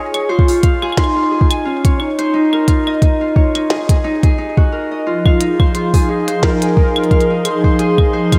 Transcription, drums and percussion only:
0.14 closed hi-hat medium
0.14 claves medium
0.39 kick loud
0.48 open hi-hat medium
0.63 kick loud
0.63 closed hi-hat loud
0.82 claves medium
0.92 claves soft
0.97 kick loud
0.97 snare loud
0.97 closed hi-hat medium
1.04 claves soft
1.41 kick loud
1.51 closed hi-hat medium
1.51 claves medium
1.85 kick loud
1.85 closed hi-hat medium
2.00 claves medium
2.19 closed hi-hat medium
2.53 claves medium
2.68 kick loud
2.68 closed hi-hat medium
2.87 claves medium
3.02 kick loud
3.02 closed hi-hat medium
3.36 kick loud
3.55 closed hi-hat medium
3.55 claves medium
3.70 snare loud
3.89 kick loud
3.89 closed hi-hat medium
4.23 kick loud
4.23 closed hi-hat medium
4.57 kick loud
5.26 kick loud
5.26 claves medium
5.41 closed hi-hat medium
5.60 kick loud
5.60 claves medium
5.75 closed hi-hat medium
5.94 kick loud
5.94 open hi-hat medium
6.28 closed hi-hat medium
6.43 kick loud
6.43 snare loud
6.62 closed hi-hat medium
6.77 kick loud
6.96 closed hi-hat soft
6.96 claves medium
7.04 closed hi-hat soft
7.11 kick loud
7.11 closed hi-hat soft
7.21 closed hi-hat soft
7.45 closed hi-hat medium
7.45 claves medium
7.64 kick loud
7.79 closed hi-hat soft
7.98 kick loud
7.98 claves medium
8.32 kick loud
8.32 closed hi-hat medium
8.32 claves medium

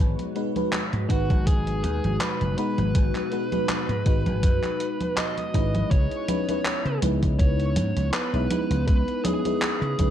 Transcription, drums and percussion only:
0.19 closed hi-hat soft
0.19 high conga soft
0.36 closed hi-hat soft
0.56 closed hi-hat soft
0.56 high conga medium
0.73 clap loud
0.73 closed hi-hat medium
0.73 high conga soft
0.93 closed hi-hat soft
0.93 high conga soft
1.10 kick medium
1.10 closed hi-hat medium
1.30 kick loud
1.30 closed hi-hat soft
1.30 high conga medium
1.47 kick loud
1.47 closed hi-hat medium
1.47 high conga soft
1.67 closed hi-hat soft
1.67 high conga soft
1.84 closed hi-hat medium
2.04 closed hi-hat soft
2.04 high conga medium
2.21 clap loud
2.21 closed hi-hat medium
2.21 high conga soft
2.41 closed hi-hat soft
2.41 high conga soft
2.58 closed hi-hat medium
2.78 closed hi-hat soft
2.78 high conga medium
2.95 kick loud
2.95 closed hi-hat medium
2.95 high conga soft
3.15 clap soft
3.15 closed hi-hat soft
3.15 high conga soft
3.32 closed hi-hat soft
3.52 closed hi-hat soft
3.52 high conga medium
3.69 clap loud
3.69 closed hi-hat medium
3.69 high conga soft
3.89 closed hi-hat soft
3.89 high conga soft
4.06 kick loud
4.06 closed hi-hat medium
4.26 closed hi-hat soft
4.26 high conga medium
4.43 kick loud
4.43 closed hi-hat medium
4.43 high conga soft
4.63 clap soft
4.63 closed hi-hat soft
4.63 high conga soft
4.80 closed hi-hat medium
5.01 closed hi-hat soft
5.01 high conga medium
5.17 clap loud
5.17 closed hi-hat medium
5.17 high conga soft
5.38 closed hi-hat soft
5.38 high conga soft
5.54 kick medium
5.54 closed hi-hat medium
5.75 closed hi-hat soft
5.75 high conga medium
5.91 kick loud
5.91 closed hi-hat medium
5.91 high conga soft
6.11 closed hi-hat soft
6.28 closed hi-hat medium
6.28 high conga medium
6.49 closed hi-hat medium
6.49 high conga soft
6.65 clap loud
6.65 closed hi-hat medium
6.65 high conga soft
6.86 closed hi-hat soft
7.02 closed hi-hat medium
7.02 high conga medium
7.23 kick medium
7.23 closed hi-hat medium
7.23 high conga soft
7.39 kick loud
7.39 closed hi-hat medium
7.39 high conga soft
7.60 closed hi-hat soft
7.76 closed hi-hat medium
7.76 high conga medium
7.97 closed hi-hat medium
7.97 high conga soft
8.13 clap loud
8.13 closed hi-hat medium
8.13 high conga soft
8.34 closed hi-hat soft
8.50 closed hi-hat loud
8.50 high conga medium
8.71 closed hi-hat medium
8.71 high conga soft
8.88 kick loud
8.88 closed hi-hat medium
8.88 high conga soft
9.08 closed hi-hat soft
9.25 closed hi-hat loud
9.25 high conga medium
9.45 closed hi-hat medium
9.45 high conga soft
9.62 clap loud
9.62 closed hi-hat medium
9.62 high conga soft
9.82 closed hi-hat soft
9.99 kick medium
9.99 closed hi-hat medium
9.99 high conga medium

